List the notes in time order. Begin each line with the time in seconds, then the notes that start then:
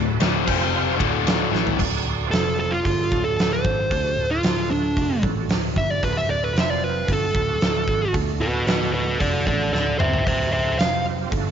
Already playing: D1 D2 A2
0.03 D4 F#4 A4 E5
0.20 D1 D2 A2 D3, snare, ride
0.30 D4 F#4 A4 C5
0.43 F1 F2 C3 F3 C4 F4 C5 F5
0.47 kick, crash
0.95 D2 A2 D4 F#4 A4 D5
0.99 D1 D3, kick, ride
1.27 snare, ride
1.52 A1 A2 E3 A3, snare
1.67 floor tom
1.76 D1 D4 F#4 A4 D5, kick
1.80 crash
2.05 D1
2.13 D4 F#4 A4 D5
2.26 F3 C4 F4 C5
2.31 F1 A4, snare, open hi-hat
2.40 F3 C4 F4 D5
2.60 A4
2.71 F4
2.81 F#3 A3 D4 A4
2.85 G1, kick, open hi-hat
3.12 D1, kick
3.24 A4
3.38 D1, snare, open hi-hat
3.53 C5
3.65 G#1, kick
3.88 D2 A3 D4 F#4 A4, kick, open hi-hat
4.16 D1
4.29 A3 D4 F4 F#4 A4
4.43 D1, snare, open hi-hat
4.56 A3 D4 F#4 A4
4.70 D1 D4
4.97 F1, kick, open hi-hat
5.23 A1, kick
5.49 D1, snare, open hi-hat
5.75 G1 E5, kick
5.90 D5
6.02 D1 A3 D4 F#4 B4 C5, kick, open hi-hat
6.17 E5
6.27 D1 D5
6.40 A3 D4 F#4 A4
6.44 B4
6.53 F1 F3 C4 F4 C5, open hi-hat
6.58 E5, snare
6.67 F3 C4 F4 C5 D5
6.84 B4
7.05 G1 A3 D4 F#4 A4, kick, open hi-hat
7.13 A4
7.34 D1, kick
7.60 D1, snare, open hi-hat
7.87 G#1, kick
8.13 D2 A3 D4 F#4 A4, kick, open hi-hat
8.38 D1 F#4 B4
8.50 A3 D4 F#4 A4
8.65 D1 F#4 B4, snare, open hi-hat
8.78 A3 D4 F#4 A4
8.91 D1 F#4 B4
9.19 F1 A4 D5, kick, open hi-hat
9.47 A1 A4 D5, kick
9.72 D1 A4 D5, snare
9.98 G1 C5 E5, mid tom
10.13 floor tom
10.25 D1 A3 D4 F#4 B4 C5 E5, kick, open hi-hat
10.51 D1 C5 E5
10.64 A3 D4 F#4 A4
10.77 F1 F3 C4 F4 C5 F5, snare, open hi-hat
10.92 F3 C4 F4 G4
11.30 G1 A3 D4 F#4 A4, kick, open hi-hat